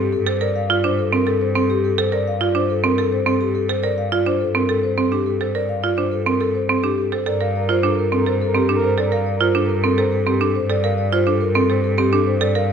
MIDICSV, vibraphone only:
0, 0, Header, 1, 2, 480
1, 0, Start_track
1, 0, Key_signature, -2, "minor"
1, 0, Tempo, 571429
1, 344, Time_signature, 3, 2, 24, 8
1, 10690, End_track
2, 0, Start_track
2, 0, Title_t, "Vibraphone"
2, 0, Program_c, 0, 11
2, 0, Note_on_c, 0, 67, 86
2, 105, Note_on_c, 0, 69, 69
2, 141, Note_off_c, 0, 67, 0
2, 227, Note_on_c, 0, 72, 73
2, 260, Note_off_c, 0, 69, 0
2, 346, Note_on_c, 0, 74, 92
2, 381, Note_off_c, 0, 72, 0
2, 467, Note_on_c, 0, 77, 71
2, 501, Note_off_c, 0, 74, 0
2, 585, Note_on_c, 0, 74, 73
2, 621, Note_off_c, 0, 77, 0
2, 703, Note_on_c, 0, 72, 84
2, 740, Note_off_c, 0, 74, 0
2, 827, Note_on_c, 0, 69, 68
2, 860, Note_off_c, 0, 72, 0
2, 946, Note_on_c, 0, 70, 69
2, 981, Note_off_c, 0, 69, 0
2, 1064, Note_on_c, 0, 69, 87
2, 1101, Note_off_c, 0, 70, 0
2, 1187, Note_on_c, 0, 72, 66
2, 1220, Note_off_c, 0, 69, 0
2, 1305, Note_on_c, 0, 69, 81
2, 1341, Note_off_c, 0, 72, 0
2, 1427, Note_on_c, 0, 67, 91
2, 1460, Note_off_c, 0, 69, 0
2, 1548, Note_on_c, 0, 69, 70
2, 1581, Note_off_c, 0, 67, 0
2, 1669, Note_on_c, 0, 72, 74
2, 1702, Note_off_c, 0, 69, 0
2, 1791, Note_on_c, 0, 74, 89
2, 1822, Note_off_c, 0, 72, 0
2, 1911, Note_on_c, 0, 77, 72
2, 1943, Note_off_c, 0, 74, 0
2, 2028, Note_on_c, 0, 74, 69
2, 2063, Note_off_c, 0, 77, 0
2, 2147, Note_on_c, 0, 72, 90
2, 2181, Note_off_c, 0, 74, 0
2, 2266, Note_on_c, 0, 69, 67
2, 2301, Note_off_c, 0, 72, 0
2, 2387, Note_on_c, 0, 70, 73
2, 2421, Note_off_c, 0, 69, 0
2, 2509, Note_on_c, 0, 69, 89
2, 2541, Note_off_c, 0, 70, 0
2, 2626, Note_on_c, 0, 72, 74
2, 2662, Note_off_c, 0, 69, 0
2, 2743, Note_on_c, 0, 69, 78
2, 2781, Note_off_c, 0, 72, 0
2, 2862, Note_on_c, 0, 67, 82
2, 2900, Note_off_c, 0, 69, 0
2, 2979, Note_on_c, 0, 69, 75
2, 3019, Note_off_c, 0, 67, 0
2, 3096, Note_on_c, 0, 72, 73
2, 3138, Note_off_c, 0, 69, 0
2, 3217, Note_on_c, 0, 74, 84
2, 3257, Note_off_c, 0, 72, 0
2, 3341, Note_on_c, 0, 77, 65
2, 3377, Note_off_c, 0, 74, 0
2, 3462, Note_on_c, 0, 74, 72
2, 3499, Note_off_c, 0, 77, 0
2, 3581, Note_on_c, 0, 72, 86
2, 3619, Note_off_c, 0, 74, 0
2, 3701, Note_on_c, 0, 69, 64
2, 3739, Note_off_c, 0, 72, 0
2, 3819, Note_on_c, 0, 70, 66
2, 3859, Note_off_c, 0, 69, 0
2, 3937, Note_on_c, 0, 69, 87
2, 3978, Note_off_c, 0, 70, 0
2, 4059, Note_on_c, 0, 72, 66
2, 4098, Note_off_c, 0, 69, 0
2, 4178, Note_on_c, 0, 69, 68
2, 4218, Note_off_c, 0, 72, 0
2, 4299, Note_on_c, 0, 67, 76
2, 4338, Note_off_c, 0, 69, 0
2, 4420, Note_on_c, 0, 69, 64
2, 4458, Note_off_c, 0, 67, 0
2, 4540, Note_on_c, 0, 72, 62
2, 4579, Note_off_c, 0, 69, 0
2, 4660, Note_on_c, 0, 74, 74
2, 4699, Note_off_c, 0, 72, 0
2, 4780, Note_on_c, 0, 77, 62
2, 4819, Note_off_c, 0, 74, 0
2, 4895, Note_on_c, 0, 74, 62
2, 4939, Note_off_c, 0, 77, 0
2, 5015, Note_on_c, 0, 72, 76
2, 5057, Note_off_c, 0, 74, 0
2, 5136, Note_on_c, 0, 69, 57
2, 5177, Note_off_c, 0, 72, 0
2, 5257, Note_on_c, 0, 70, 60
2, 5297, Note_off_c, 0, 69, 0
2, 5378, Note_on_c, 0, 69, 76
2, 5418, Note_off_c, 0, 70, 0
2, 5497, Note_on_c, 0, 72, 59
2, 5538, Note_off_c, 0, 69, 0
2, 5620, Note_on_c, 0, 69, 65
2, 5658, Note_off_c, 0, 72, 0
2, 5739, Note_on_c, 0, 67, 81
2, 5778, Note_off_c, 0, 69, 0
2, 5861, Note_on_c, 0, 69, 58
2, 5898, Note_off_c, 0, 67, 0
2, 5985, Note_on_c, 0, 72, 64
2, 6019, Note_off_c, 0, 69, 0
2, 6105, Note_on_c, 0, 74, 83
2, 6140, Note_off_c, 0, 72, 0
2, 6228, Note_on_c, 0, 77, 69
2, 6261, Note_off_c, 0, 74, 0
2, 6348, Note_on_c, 0, 74, 64
2, 6381, Note_off_c, 0, 77, 0
2, 6468, Note_on_c, 0, 72, 89
2, 6501, Note_off_c, 0, 74, 0
2, 6587, Note_on_c, 0, 69, 65
2, 6622, Note_off_c, 0, 72, 0
2, 6709, Note_on_c, 0, 70, 65
2, 6741, Note_off_c, 0, 69, 0
2, 6828, Note_on_c, 0, 69, 85
2, 6862, Note_off_c, 0, 70, 0
2, 6948, Note_on_c, 0, 72, 69
2, 6981, Note_off_c, 0, 69, 0
2, 7069, Note_on_c, 0, 69, 77
2, 7101, Note_off_c, 0, 72, 0
2, 7189, Note_on_c, 0, 67, 84
2, 7222, Note_off_c, 0, 69, 0
2, 7306, Note_on_c, 0, 69, 68
2, 7342, Note_off_c, 0, 67, 0
2, 7423, Note_on_c, 0, 72, 71
2, 7461, Note_off_c, 0, 69, 0
2, 7543, Note_on_c, 0, 74, 80
2, 7580, Note_off_c, 0, 72, 0
2, 7662, Note_on_c, 0, 77, 65
2, 7700, Note_off_c, 0, 74, 0
2, 7780, Note_on_c, 0, 74, 61
2, 7819, Note_off_c, 0, 77, 0
2, 7898, Note_on_c, 0, 72, 80
2, 7939, Note_off_c, 0, 74, 0
2, 8022, Note_on_c, 0, 69, 64
2, 8058, Note_off_c, 0, 72, 0
2, 8140, Note_on_c, 0, 70, 67
2, 8179, Note_off_c, 0, 69, 0
2, 8262, Note_on_c, 0, 69, 84
2, 8299, Note_off_c, 0, 70, 0
2, 8379, Note_on_c, 0, 72, 72
2, 8419, Note_off_c, 0, 69, 0
2, 8502, Note_on_c, 0, 69, 73
2, 8538, Note_off_c, 0, 72, 0
2, 8620, Note_on_c, 0, 67, 83
2, 8659, Note_off_c, 0, 69, 0
2, 8744, Note_on_c, 0, 69, 71
2, 8778, Note_off_c, 0, 67, 0
2, 8864, Note_on_c, 0, 72, 71
2, 8900, Note_off_c, 0, 69, 0
2, 8985, Note_on_c, 0, 74, 87
2, 9020, Note_off_c, 0, 72, 0
2, 9102, Note_on_c, 0, 77, 72
2, 9140, Note_off_c, 0, 74, 0
2, 9222, Note_on_c, 0, 74, 74
2, 9259, Note_off_c, 0, 77, 0
2, 9345, Note_on_c, 0, 72, 90
2, 9380, Note_off_c, 0, 74, 0
2, 9460, Note_on_c, 0, 69, 67
2, 9500, Note_off_c, 0, 72, 0
2, 9582, Note_on_c, 0, 70, 72
2, 9619, Note_off_c, 0, 69, 0
2, 9699, Note_on_c, 0, 69, 93
2, 9739, Note_off_c, 0, 70, 0
2, 9825, Note_on_c, 0, 72, 76
2, 9858, Note_off_c, 0, 69, 0
2, 9944, Note_on_c, 0, 69, 78
2, 9980, Note_off_c, 0, 72, 0
2, 10061, Note_on_c, 0, 67, 95
2, 10100, Note_off_c, 0, 69, 0
2, 10182, Note_on_c, 0, 69, 80
2, 10219, Note_off_c, 0, 67, 0
2, 10303, Note_on_c, 0, 72, 80
2, 10339, Note_off_c, 0, 69, 0
2, 10422, Note_on_c, 0, 74, 87
2, 10460, Note_off_c, 0, 72, 0
2, 10546, Note_on_c, 0, 77, 74
2, 10579, Note_off_c, 0, 74, 0
2, 10690, Note_off_c, 0, 77, 0
2, 10690, End_track
0, 0, End_of_file